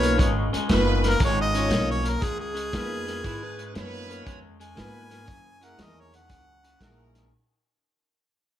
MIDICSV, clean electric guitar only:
0, 0, Header, 1, 2, 480
1, 0, Start_track
1, 0, Key_signature, 6, "major"
1, 0, Tempo, 508044
1, 1144, Time_signature, 4, 2, 24, 8
1, 8122, End_track
2, 0, Start_track
2, 0, Title_t, "Clean electric guitar"
2, 0, Program_c, 0, 27
2, 20, Note_on_c, 0, 49, 65
2, 24, Note_on_c, 0, 58, 84
2, 157, Note_off_c, 0, 49, 0
2, 166, Note_off_c, 0, 58, 0
2, 168, Note_on_c, 0, 49, 84
2, 172, Note_on_c, 0, 56, 98
2, 468, Note_off_c, 0, 49, 0
2, 469, Note_off_c, 0, 56, 0
2, 502, Note_on_c, 0, 49, 74
2, 503, Note_on_c, 0, 56, 83
2, 645, Note_off_c, 0, 49, 0
2, 646, Note_off_c, 0, 56, 0
2, 656, Note_on_c, 0, 49, 85
2, 662, Note_on_c, 0, 58, 77
2, 951, Note_off_c, 0, 49, 0
2, 955, Note_off_c, 0, 58, 0
2, 976, Note_on_c, 0, 49, 60
2, 988, Note_on_c, 0, 58, 75
2, 1123, Note_off_c, 0, 49, 0
2, 1129, Note_off_c, 0, 58, 0
2, 1134, Note_on_c, 0, 49, 87
2, 1136, Note_on_c, 0, 56, 107
2, 1431, Note_off_c, 0, 49, 0
2, 1432, Note_off_c, 0, 56, 0
2, 1456, Note_on_c, 0, 49, 73
2, 1464, Note_on_c, 0, 56, 76
2, 1588, Note_off_c, 0, 49, 0
2, 1596, Note_off_c, 0, 56, 0
2, 1599, Note_on_c, 0, 49, 73
2, 1599, Note_on_c, 0, 58, 79
2, 1903, Note_off_c, 0, 49, 0
2, 1903, Note_off_c, 0, 58, 0
2, 1922, Note_on_c, 0, 49, 65
2, 1924, Note_on_c, 0, 58, 80
2, 2076, Note_off_c, 0, 49, 0
2, 2077, Note_off_c, 0, 58, 0
2, 2086, Note_on_c, 0, 49, 86
2, 2086, Note_on_c, 0, 56, 93
2, 2387, Note_off_c, 0, 49, 0
2, 2387, Note_off_c, 0, 56, 0
2, 2405, Note_on_c, 0, 49, 74
2, 2407, Note_on_c, 0, 56, 78
2, 2557, Note_off_c, 0, 49, 0
2, 2559, Note_off_c, 0, 56, 0
2, 2580, Note_on_c, 0, 49, 81
2, 2582, Note_on_c, 0, 58, 83
2, 2874, Note_off_c, 0, 49, 0
2, 2875, Note_off_c, 0, 58, 0
2, 2900, Note_on_c, 0, 49, 64
2, 2900, Note_on_c, 0, 58, 78
2, 3045, Note_off_c, 0, 49, 0
2, 3045, Note_off_c, 0, 58, 0
2, 3059, Note_on_c, 0, 56, 99
2, 3061, Note_on_c, 0, 49, 83
2, 3354, Note_off_c, 0, 56, 0
2, 3355, Note_off_c, 0, 49, 0
2, 3379, Note_on_c, 0, 49, 75
2, 3386, Note_on_c, 0, 56, 76
2, 3522, Note_off_c, 0, 49, 0
2, 3528, Note_off_c, 0, 56, 0
2, 3534, Note_on_c, 0, 49, 76
2, 3535, Note_on_c, 0, 58, 83
2, 3831, Note_off_c, 0, 49, 0
2, 3831, Note_off_c, 0, 58, 0
2, 3853, Note_on_c, 0, 49, 71
2, 3857, Note_on_c, 0, 58, 75
2, 4002, Note_off_c, 0, 49, 0
2, 4003, Note_off_c, 0, 58, 0
2, 4012, Note_on_c, 0, 49, 84
2, 4018, Note_on_c, 0, 56, 97
2, 4310, Note_off_c, 0, 49, 0
2, 4313, Note_off_c, 0, 56, 0
2, 4343, Note_on_c, 0, 49, 83
2, 4349, Note_on_c, 0, 56, 79
2, 4480, Note_off_c, 0, 49, 0
2, 4490, Note_off_c, 0, 56, 0
2, 4492, Note_on_c, 0, 49, 84
2, 4499, Note_on_c, 0, 58, 92
2, 4790, Note_off_c, 0, 49, 0
2, 4793, Note_off_c, 0, 58, 0
2, 4817, Note_on_c, 0, 49, 66
2, 4825, Note_on_c, 0, 58, 74
2, 4954, Note_off_c, 0, 49, 0
2, 4965, Note_on_c, 0, 49, 106
2, 4966, Note_on_c, 0, 42, 96
2, 4967, Note_off_c, 0, 58, 0
2, 5267, Note_off_c, 0, 42, 0
2, 5267, Note_off_c, 0, 49, 0
2, 5303, Note_on_c, 0, 42, 70
2, 5305, Note_on_c, 0, 49, 89
2, 5444, Note_off_c, 0, 42, 0
2, 5448, Note_off_c, 0, 49, 0
2, 5456, Note_on_c, 0, 42, 80
2, 5458, Note_on_c, 0, 51, 77
2, 5752, Note_off_c, 0, 42, 0
2, 5753, Note_off_c, 0, 51, 0
2, 5784, Note_on_c, 0, 42, 75
2, 5787, Note_on_c, 0, 51, 78
2, 5923, Note_off_c, 0, 42, 0
2, 5929, Note_off_c, 0, 51, 0
2, 5934, Note_on_c, 0, 42, 84
2, 5945, Note_on_c, 0, 49, 97
2, 6231, Note_off_c, 0, 42, 0
2, 6237, Note_off_c, 0, 49, 0
2, 6270, Note_on_c, 0, 42, 69
2, 6276, Note_on_c, 0, 49, 78
2, 6410, Note_off_c, 0, 42, 0
2, 6413, Note_off_c, 0, 49, 0
2, 6425, Note_on_c, 0, 42, 72
2, 6434, Note_on_c, 0, 51, 91
2, 6716, Note_off_c, 0, 42, 0
2, 6721, Note_off_c, 0, 51, 0
2, 6748, Note_on_c, 0, 42, 67
2, 6756, Note_on_c, 0, 51, 68
2, 6889, Note_off_c, 0, 42, 0
2, 6893, Note_off_c, 0, 51, 0
2, 8122, End_track
0, 0, End_of_file